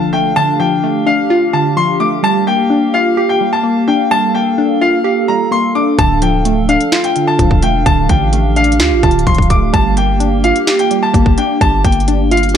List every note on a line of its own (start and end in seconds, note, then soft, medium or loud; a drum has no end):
0.00 0.35 D3 medium
0.00 0.59 F3 medium
0.00 0.12 A3 medium
0.00 0.36 D4 medium
0.00 2.20 D4 medium
0.00 0.60 F4 loud
0.00 0.34 A4 medium
0.00 2.20 F5 medium
0.00 0.11 A5 medium
0.00 impact medium
0.13 0.82 A3 medium
0.13 0.31 G5 medium
0.36 1.52 D3 medium
0.36 4.07 G4 medium
0.36 0.55 A5 loud
0.60 1.76 F3 medium
0.60 1.04 G5 medium
0.83 1.99 A3 medium
1.06 2.24 D4 medium
1.06 1.51 F5 medium
1.30 2.24 F4 loud
1.53 2.24 D3 medium
1.53 1.72 A5 medium
1.77 2.24 F3 medium
1.77 1.95 C6 medium
2.00 2.24 A3 medium
2.00 2.19 D6 medium
2.23 3.40 G3 loud
2.23 5.95 A#3 medium
2.23 5.95 F5 medium
2.23 2.42 A5 loud
2.47 3.62 A#3 medium
2.47 2.91 G5 medium
2.70 3.87 D4 medium
2.94 4.11 F4 medium
2.94 3.27 F5 medium
3.17 4.34 G4 loud
3.29 3.48 G5 medium
3.41 4.10 G3 medium
3.53 3.86 A5 medium
3.63 4.34 A#3 medium
3.88 4.57 D4 medium
3.88 4.06 G5 medium
4.11 5.28 G3 medium
4.11 7.82 A4 medium
4.11 4.30 A5 loud
4.35 5.50 A#3 medium
4.35 4.79 G5 medium
4.58 5.74 D4 medium
4.81 5.99 F4 medium
4.81 5.25 F5 medium
5.04 5.98 G4 loud
5.28 5.99 G3 medium
5.28 5.47 A#5 medium
5.51 5.98 A#3 medium
5.51 5.70 C6 medium
5.75 5.99 D4 medium
5.75 5.94 D6 medium
5.98 6.77 D1 loud
5.98 7.15 D3 loud
5.98 9.70 D4 medium
5.98 12.57 F5 loud
5.98 6.17 A5 loud
5.98 kick loud
5.98 closed hi-hat medium
6.22 7.37 F3 medium
6.22 6.66 G5 medium
6.22 closed hi-hat medium
6.45 7.62 A3 medium
6.45 closed hi-hat medium
6.69 7.86 D4 medium
6.69 7.02 F5 medium
6.69 closed hi-hat medium
6.81 closed hi-hat medium
6.92 8.10 F4 loud
6.92 snare loud
6.92 clap medium
6.92 closed hi-hat soft
7.04 7.23 G5 medium
7.04 closed hi-hat medium
7.16 7.85 D3 medium
7.16 closed hi-hat medium
7.27 7.61 A5 medium
7.39 7.64 D1 loud
7.39 8.09 F3 medium
7.39 kick medium
7.39 closed hi-hat medium
7.51 kick loud
7.62 7.85 E1 loud
7.62 8.32 A3 medium
7.62 7.81 G5 medium
7.62 closed hi-hat medium
7.86 8.09 D1 loud
7.86 9.02 D3 medium
7.86 9.72 G4 medium
7.86 8.05 A5 loud
7.86 kick loud
7.86 closed hi-hat medium
8.09 8.81 A1 loud
8.09 9.26 F3 medium
8.09 8.54 G5 medium
8.09 kick medium
8.09 closed hi-hat medium
8.33 9.49 A3 medium
8.33 closed hi-hat medium
8.56 9.74 D4 medium
8.56 9.00 F5 medium
8.56 closed hi-hat medium
8.64 closed hi-hat medium
8.72 closed hi-hat medium
8.80 8.93 D2 loud
8.80 9.74 F4 loud
8.80 snare loud
8.80 clap loud
8.80 closed hi-hat medium
8.92 9.03 A1 loud
9.03 9.26 D1 loud
9.03 9.74 D3 medium
9.03 9.22 A5 medium
9.03 kick loud
9.03 closed hi-hat medium
9.11 closed hi-hat medium
9.19 closed hi-hat medium
9.27 9.72 D1 loud
9.27 9.74 F3 medium
9.27 9.45 C6 medium
9.27 kick loud
9.27 closed hi-hat medium
9.35 kick loud
9.35 closed hi-hat medium
9.42 closed hi-hat medium
9.50 9.74 A3 medium
9.50 9.69 D6 medium
9.50 kick medium
9.50 closed hi-hat medium
9.73 10.52 G1 loud
9.73 10.90 G3 loud
9.73 12.57 A#3 medium
9.73 12.57 G4 medium
9.73 9.92 A5 loud
9.73 kick loud
9.73 closed hi-hat medium
9.97 11.12 A#3 medium
9.97 10.41 G5 medium
9.97 closed hi-hat medium
10.20 11.37 D4 medium
10.20 closed hi-hat medium
10.44 11.61 F4 medium
10.44 10.77 F5 medium
10.44 closed hi-hat medium
10.56 closed hi-hat medium
10.67 11.85 G4 loud
10.67 snare loud
10.67 clap loud
10.67 closed hi-hat soft
10.79 10.98 G5 medium
10.79 closed hi-hat medium
10.91 11.60 G3 medium
10.91 closed hi-hat medium
11.03 11.36 A5 medium
11.14 11.37 G1 loud
11.14 11.84 A#3 loud
11.14 kick loud
11.14 closed hi-hat medium
11.26 kick loud
11.38 12.07 D4 medium
11.38 11.56 G5 medium
11.38 closed hi-hat medium
11.61 11.84 G1 loud
11.61 12.57 G3 medium
11.61 11.80 A5 loud
11.61 kick loud
11.61 closed hi-hat medium
11.85 12.57 G1 loud
11.85 12.57 A#3 medium
11.85 12.29 G5 medium
11.85 kick medium
11.85 closed hi-hat medium
11.92 closed hi-hat medium
12.00 closed hi-hat soft
12.08 12.57 D4 medium
12.08 closed hi-hat medium
12.31 12.57 F4 medium
12.31 12.57 F5 medium
12.31 closed hi-hat medium
12.37 closed hi-hat medium
12.43 closed hi-hat medium
12.49 closed hi-hat soft